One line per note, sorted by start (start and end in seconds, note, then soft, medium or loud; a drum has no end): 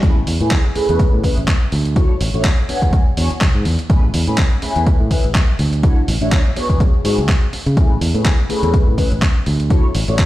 0.02 0.22 A1 loud
0.02 0.17 A3 loud
0.02 0.17 C#4 medium
0.02 0.17 E4 medium
0.02 0.17 G#4 medium
0.02 0.17 B4 loud
0.02 kick loud
0.02 closed hi-hat medium
0.27 0.37 E2 medium
0.27 open hi-hat loud
0.40 0.49 A2 medium
0.40 0.52 A3 medium
0.40 0.52 C#4 medium
0.40 0.52 E4 medium
0.40 0.52 G#4 medium
0.40 0.52 B4 medium
0.40 closed hi-hat medium
0.51 kick loud
0.51 clap loud
0.51 closed hi-hat medium
0.75 0.87 A3 medium
0.75 0.87 C#4 medium
0.75 0.87 E4 medium
0.75 0.87 G#4 medium
0.75 0.87 B4 medium
0.75 muted fingered electric bass stroke soft
0.75 open hi-hat medium
0.88 0.98 E2 medium
0.88 1.09 A3 medium
0.88 1.09 C#4 medium
0.88 1.09 E4 medium
0.88 1.09 G#4 medium
0.88 1.09 B4 medium
0.88 closed hi-hat medium
0.99 muted fingered electric bass stroke soft
0.99 kick loud
0.99 closed hi-hat medium
1.13 1.22 A2 loud
1.23 1.38 A3 medium
1.23 1.38 C#4 medium
1.23 1.38 E4 medium
1.23 1.38 G#4 medium
1.23 1.38 B4 medium
1.23 kick medium
1.23 open hi-hat loud
1.37 1.46 A1 medium
1.37 closed hi-hat medium
1.48 kick loud
1.48 clap loud
1.48 closed hi-hat medium
1.72 2.05 D2 medium
1.72 open hi-hat medium
1.85 closed hi-hat medium
1.96 2.10 A3 loud
1.96 2.10 D4 medium
1.96 2.11 E4 medium
1.96 2.11 F#4 medium
1.96 2.11 C#5 loud
1.96 kick loud
1.96 closed hi-hat medium
2.21 2.31 A1 medium
2.21 open hi-hat loud
2.33 2.42 A1 medium
2.33 2.45 A3 medium
2.33 2.45 D4 medium
2.33 2.46 E4 medium
2.33 2.46 F#4 medium
2.33 2.46 C#5 medium
2.33 closed hi-hat medium
2.44 kick loud
2.44 clap loud
2.44 closed hi-hat medium
2.68 2.80 B3 medium
2.68 2.80 D4 medium
2.68 2.80 F#4 medium
2.68 2.81 G#4 medium
2.68 2.81 C#5 medium
2.68 muted fingered electric bass stroke soft
2.68 open hi-hat medium
2.82 2.91 E2 medium
2.82 3.02 B3 medium
2.82 3.02 D4 medium
2.82 3.02 F#4 medium
2.82 3.02 G#4 medium
2.82 3.03 C#5 medium
2.82 kick medium
2.82 closed hi-hat medium
2.93 3.03 E1 loud
2.93 kick loud
2.93 closed hi-hat medium
3.07 muted fingered electric bass stroke soft
3.17 3.28 E2 medium
3.17 3.31 B3 medium
3.17 3.31 D4 medium
3.17 3.31 F#4 medium
3.17 3.31 G#4 medium
3.17 3.32 C#5 medium
3.17 open hi-hat loud
3.31 muted fingered electric bass stroke soft
3.31 closed hi-hat medium
3.41 3.52 B1 medium
3.41 kick loud
3.41 clap loud
3.41 closed hi-hat medium
3.55 3.63 G#2 medium
3.65 3.76 E2 medium
3.65 open hi-hat medium
3.79 closed hi-hat medium
3.89 4.09 A1 loud
3.89 4.04 A3 medium
3.89 4.04 C#4 medium
3.89 4.04 E4 medium
3.89 4.04 G#4 medium
3.89 4.04 B4 loud
3.89 kick loud
3.89 closed hi-hat medium
4.14 4.25 E2 loud
4.14 open hi-hat loud
4.27 4.36 A2 loud
4.27 4.39 A3 medium
4.27 4.39 C#4 medium
4.27 4.39 E4 medium
4.27 4.39 G#4 medium
4.27 4.39 B4 medium
4.27 closed hi-hat medium
4.38 kick loud
4.38 clap loud
4.38 closed hi-hat medium
4.62 4.74 A3 medium
4.62 4.74 C#4 medium
4.62 4.74 E4 medium
4.62 4.74 G#4 medium
4.62 4.74 B4 medium
4.62 muted fingered electric bass stroke soft
4.62 open hi-hat loud
4.75 4.84 E2 medium
4.75 4.96 A3 medium
4.75 4.96 C#4 medium
4.75 4.96 E4 medium
4.75 4.96 G#4 medium
4.75 4.96 B4 medium
4.75 closed hi-hat soft
4.86 muted fingered electric bass stroke soft
4.86 kick loud
4.86 closed hi-hat medium
5.00 5.09 A2 medium
5.10 5.25 A3 medium
5.10 5.25 C#4 medium
5.10 5.25 E4 medium
5.10 5.25 G#4 medium
5.10 5.25 B4 medium
5.10 kick medium
5.10 open hi-hat loud
5.24 5.33 A1 medium
5.24 closed hi-hat soft
5.35 kick loud
5.35 clap loud
5.35 closed hi-hat medium
5.59 5.92 D2 loud
5.59 open hi-hat medium
5.73 closed hi-hat soft
5.83 5.97 A3 loud
5.83 5.98 D4 medium
5.83 5.98 E4 medium
5.83 5.98 F#4 medium
5.83 5.98 C#5 loud
5.83 kick loud
5.83 closed hi-hat medium
6.08 6.18 A1 medium
6.08 open hi-hat loud
6.21 6.30 A1 loud
6.21 6.33 A3 medium
6.21 6.33 D4 medium
6.21 6.33 E4 medium
6.21 6.33 F#4 medium
6.21 6.33 C#5 medium
6.21 closed hi-hat soft
6.32 kick loud
6.32 clap loud
6.32 closed hi-hat medium
6.56 6.68 B3 medium
6.56 6.68 D4 medium
6.56 6.68 F#4 medium
6.56 6.68 G#4 medium
6.56 6.68 C#5 medium
6.56 muted fingered electric bass stroke soft
6.56 open hi-hat medium
6.69 6.78 E2 medium
6.69 6.89 B3 medium
6.69 6.90 D4 medium
6.69 6.90 F#4 medium
6.69 6.90 G#4 medium
6.69 6.90 C#5 medium
6.69 kick medium
6.69 closed hi-hat soft
6.80 6.91 E1 loud
6.80 kick loud
6.80 closed hi-hat medium
6.94 muted fingered electric bass stroke soft
7.04 7.20 G#2 loud
7.04 7.19 B3 medium
7.04 7.19 D4 medium
7.04 7.19 F#4 medium
7.04 7.19 G#4 medium
7.04 7.19 C#5 medium
7.04 open hi-hat loud
7.18 7.26 D2 medium
7.18 closed hi-hat soft
7.29 kick loud
7.29 clap loud
7.29 closed hi-hat medium
7.53 muted fingered electric bass stroke soft
7.53 open hi-hat medium
7.66 7.75 C#3 loud
7.66 closed hi-hat soft
7.77 7.96 A1 loud
7.77 7.91 A3 loud
7.77 7.91 C#4 medium
7.77 7.91 E4 medium
7.77 7.91 G#4 medium
7.77 7.91 B4 loud
7.77 kick loud
7.77 closed hi-hat medium
8.01 8.12 E2 medium
8.01 open hi-hat loud
8.14 8.23 A2 loud
8.14 8.26 A3 medium
8.14 8.26 C#4 medium
8.14 8.26 E4 medium
8.14 8.26 G#4 medium
8.14 8.26 B4 medium
8.14 closed hi-hat soft
8.25 kick loud
8.25 clap loud
8.25 closed hi-hat medium
8.49 8.61 A3 medium
8.49 8.61 C#4 medium
8.49 8.61 E4 medium
8.49 8.61 G#4 medium
8.49 8.61 B4 medium
8.49 muted fingered electric bass stroke soft
8.49 open hi-hat medium
8.62 8.71 E2 medium
8.62 8.83 A3 medium
8.62 8.83 C#4 medium
8.62 8.83 E4 medium
8.62 8.83 G#4 medium
8.62 8.83 B4 medium
8.62 closed hi-hat soft
8.74 kick loud
8.74 closed hi-hat medium
8.87 8.96 A2 medium
8.98 9.12 A3 medium
8.98 9.12 C#4 medium
8.98 9.12 E4 medium
8.98 9.12 G#4 medium
8.98 9.12 B4 medium
8.98 kick medium
8.98 open hi-hat loud
9.12 9.20 A1 loud
9.12 closed hi-hat soft
9.22 kick loud
9.22 clap loud
9.22 closed hi-hat medium
9.46 9.79 D2 loud
9.46 open hi-hat medium
9.60 closed hi-hat soft
9.70 9.85 A3 loud
9.70 9.85 D4 medium
9.70 9.85 E4 medium
9.70 9.85 F#4 medium
9.70 9.85 C#5 loud
9.70 kick loud
9.70 closed hi-hat medium
9.95 10.05 A1 loud
9.95 open hi-hat loud
10.08 10.17 A1 loud
10.08 10.20 A3 medium
10.08 10.20 D4 medium
10.08 10.20 E4 medium
10.08 10.20 F#4 medium
10.08 10.20 C#5 medium
10.08 closed hi-hat medium
10.19 kick loud
10.19 clap loud
10.19 closed hi-hat medium